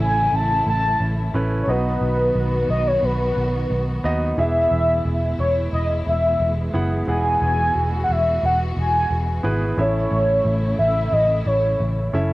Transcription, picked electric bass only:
0.00 0.27 A1 medium
0.33 0.61 A1 medium
0.67 0.94 A1 medium
1.00 1.28 A1 medium
1.34 1.62 A1 medium
1.68 1.95 B1 medium
2.01 2.29 B1 medium
2.35 2.63 B1 medium
2.69 2.97 B1 medium
3.03 3.31 B1 medium
3.37 3.64 B1 medium
3.70 3.98 B1 medium
4.04 4.32 D#2 medium
4.38 4.65 E1 medium
4.71 4.99 E1 medium
5.05 5.33 E1 medium
5.39 5.67 E1 medium
5.73 6.01 E1 medium
6.07 6.34 E1 medium
6.40 6.68 E1 medium
6.74 7.02 F#1 medium
7.08 7.35 E1 medium
7.42 7.69 E1 medium
7.75 8.03 E1 medium
8.09 8.37 E1 medium
8.43 8.71 E1 medium
8.76 9.04 E1 medium
9.10 9.38 E1 medium
9.44 9.72 G#1 medium
9.78 10.05 A1 medium
10.11 10.39 A1 medium
10.45 10.73 A1 medium
10.79 11.07 A1 medium
11.13 11.40 A1 loud
11.46 11.74 A1 medium
11.80 12.08 A1 medium
12.14 12.33 F#1 medium

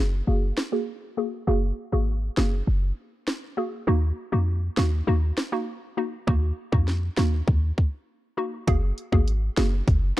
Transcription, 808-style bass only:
0.00 0.22 F#1 medium
0.28 0.52 F#1 loud
1.48 1.72 F#1 loud
1.93 2.30 G#1 medium
2.37 2.62 F#1 medium
2.67 2.92 F#1 loud
3.87 4.12 D#2 loud
4.33 4.70 F2 medium
4.78 5.02 D#2 medium
5.07 5.32 D#2 loud
6.28 6.52 D#2 loud
6.72 7.10 F2 medium
7.18 7.42 D#2 medium
7.48 7.72 D#2 loud
8.68 8.93 F#1 loud
9.12 9.50 G#1 medium
9.58 9.83 F#1 medium
9.88 10.12 F#1 loud

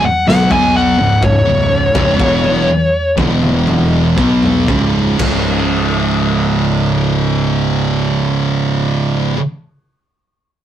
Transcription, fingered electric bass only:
0.04 muted fingered electric bass stroke soft
0.28 0.49 B1 medium
0.51 0.95 B1 medium
0.98 1.43 C#1 medium
1.47 1.92 C#1 medium
1.95 2.18 C#1 medium
2.20 2.65 E1 loud
3.18 4.14 E1 loud
4.18 4.65 B1 medium
4.68 5.16 C#1 medium
5.20 9.32 C#1 medium

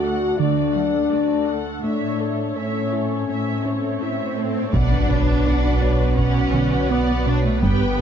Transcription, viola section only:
0.03 0.40 A4 soft
0.03 0.40 F#5 soft
0.39 0.73 F#4 soft
0.39 0.73 D5 soft
0.76 1.12 A4 soft
0.76 1.12 F#5 soft
1.12 1.48 F#4 soft
1.12 1.48 D5 soft
1.48 1.84 A4 soft
1.48 1.84 F#5 soft
1.84 2.18 C#5 soft
1.84 2.18 E5 soft
2.21 2.57 A4 soft
2.21 2.56 C#5 soft
2.57 2.92 C#5 soft
2.57 2.93 E5 soft
2.93 3.29 A4 soft
2.93 3.28 C#5 soft
3.29 3.63 C#5 soft
3.29 3.63 E5 soft
3.65 4.01 A4 soft
3.65 4.00 C#5 soft
4.01 4.36 C#5 soft
4.01 4.37 E5 soft
4.37 4.74 A4 soft
4.37 4.74 C#5 soft
4.73 5.07 B4 soft
4.73 5.07 D5 soft
5.10 5.46 D4 soft
5.10 5.45 B4 soft
5.46 5.81 B4 soft
5.46 5.82 D5 soft
5.82 6.18 D4 soft
5.82 6.18 B4 soft
6.19 6.52 B4 soft
6.19 6.52 F#5 soft
6.54 6.89 B4 soft
6.54 6.90 F#5 soft
6.90 7.25 B4 soft
6.90 7.26 D5 soft
7.26 7.62 D4 soft
7.26 7.62 B4 soft
7.63 7.96 G4 medium
7.63 7.96 B4 medium

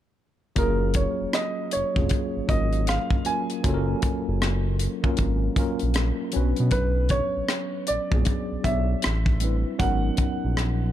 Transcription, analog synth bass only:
0.57 1.06 F#1 medium
1.21 1.27 F1 soft
1.75 1.84 F1 soft
1.97 2.08 F1 medium
2.36 2.42 G#1 soft
2.50 2.98 G#1 medium
3.65 3.95 F#1 loud
4.28 4.88 F#1 medium
5.20 5.49 G#1 medium
5.83 6.12 A#1 medium
6.36 6.53 B1 medium
6.60 6.70 B2 medium
6.73 7.21 B1 medium
7.37 7.42 A#1 soft
7.90 7.99 A#1 soft
8.13 8.24 A#1 medium
8.52 8.57 B1 soft
8.66 8.95 B1 medium
9.06 9.65 A1 medium
9.81 10.10 G#1 medium
10.45 10.92 A#1 medium

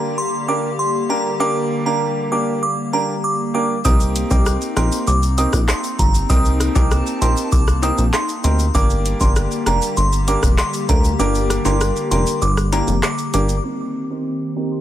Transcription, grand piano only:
0.00 0.15 A#3 medium
0.00 0.15 D4 medium
0.00 0.15 G4 medium
0.00 0.15 A#4 medium
0.48 0.67 A#3 medium
0.48 0.67 D4 medium
0.48 0.68 G4 medium
0.48 0.68 A#4 medium
1.09 1.29 A#3 medium
1.09 1.29 D4 medium
1.09 1.29 G4 medium
1.09 1.29 A#4 medium
1.40 1.82 A#3 loud
1.40 1.82 D4 medium
1.40 1.82 G4 medium
1.40 1.82 A#4 loud
1.86 2.28 A#3 medium
1.86 2.28 D4 medium
1.86 2.28 G4 medium
1.86 2.28 A#4 medium
2.32 2.60 A#3 medium
2.32 2.60 D4 medium
2.32 2.60 G4 medium
2.32 2.60 A#4 medium
2.93 3.12 A#3 medium
2.93 3.12 D4 medium
2.93 3.12 G4 medium
2.93 3.12 A#4 medium
3.54 3.73 A#3 medium
3.54 3.73 D4 medium
3.54 3.74 G4 medium
3.54 3.74 A#4 medium
3.85 4.27 C4 medium
3.85 4.27 D#4 medium
3.85 4.27 G4 medium
3.85 4.27 A#4 loud
4.30 4.73 C4 medium
4.30 4.73 D#4 medium
4.30 4.73 G4 medium
4.30 4.73 A#4 medium
4.76 5.05 C4 medium
4.76 5.05 D#4 medium
4.76 5.05 G4 medium
4.76 5.05 A#4 medium
5.38 5.57 C4 medium
5.38 5.57 D#4 medium
5.38 5.57 G4 medium
5.38 5.57 A#4 medium
6.30 6.72 C4 loud
6.30 6.72 D#4 medium
6.30 6.72 G4 medium
6.30 6.72 A#4 loud
6.76 7.18 C4 medium
6.76 7.18 D#4 medium
6.76 7.18 G4 medium
6.76 7.18 A#4 medium
7.21 7.50 C4 medium
7.21 7.50 D#4 medium
7.21 7.50 G4 medium
7.21 7.50 A#4 medium
7.83 8.02 C4 medium
7.83 8.02 D#4 medium
7.83 8.02 G4 medium
7.83 8.02 A#4 medium
8.44 8.63 C4 medium
8.44 8.63 D#4 medium
8.44 8.63 G4 medium
8.44 8.64 A#4 medium
8.75 9.17 A#3 loud
8.75 9.17 D4 medium
8.75 9.17 G4 medium
8.75 9.17 A#4 loud
9.21 9.63 A#3 medium
9.21 9.63 D4 medium
9.21 9.63 G4 medium
9.21 9.63 A#4 medium
9.67 9.95 A#3 medium
9.67 9.95 D4 medium
9.67 9.95 G4 medium
9.67 9.95 A#4 medium
10.28 10.47 A#3 medium
10.28 10.47 D4 medium
10.28 10.47 G4 medium
10.28 10.47 A#4 medium
10.89 11.08 A#3 medium
10.89 11.08 D4 medium
10.89 11.08 G4 medium
10.89 11.08 A#4 medium
11.19 11.62 A#3 medium
11.19 11.62 D4 medium
11.19 11.62 G4 medium
11.19 11.62 A#4 loud
11.65 12.08 A#3 medium
11.65 12.08 D4 medium
11.65 12.08 G4 medium
11.65 12.08 A#4 medium
12.11 12.39 A#3 medium
12.11 12.40 D4 medium
12.11 12.40 G4 medium
12.11 12.40 A#4 medium
12.72 12.92 A#3 medium
12.72 12.92 D4 medium
12.72 12.92 G4 medium
12.72 12.92 A#4 medium
13.34 13.53 A#3 medium
13.34 13.53 D4 medium
13.34 13.53 G4 medium
13.34 13.53 A#4 medium
13.64 14.07 C4 medium
13.64 14.07 D#4 medium
13.64 14.07 G4 medium
13.64 14.07 A#4 loud
14.10 14.53 C4 medium
14.10 14.53 D#4 medium
14.10 14.53 G4 medium
14.10 14.53 A#4 medium
14.56 14.81 C4 medium
14.56 14.81 D#4 medium
14.56 14.81 G4 medium
14.56 14.81 A#4 medium

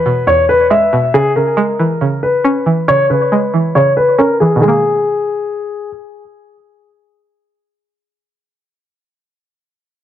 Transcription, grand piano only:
0.00 0.23 B4 medium
0.27 0.44 C#5 medium
0.49 0.65 B4 medium
0.71 1.12 E5 medium
1.14 1.30 G#4 loud
1.36 2.19 A#4 medium
2.23 2.84 B4 medium
2.88 3.04 C#5 loud
3.10 3.71 B4 medium
3.75 3.91 C#5 medium
3.97 4.13 B4 medium
4.18 4.35 A#4 medium
4.40 4.57 G#4 medium
4.62 5.88 G#4 medium

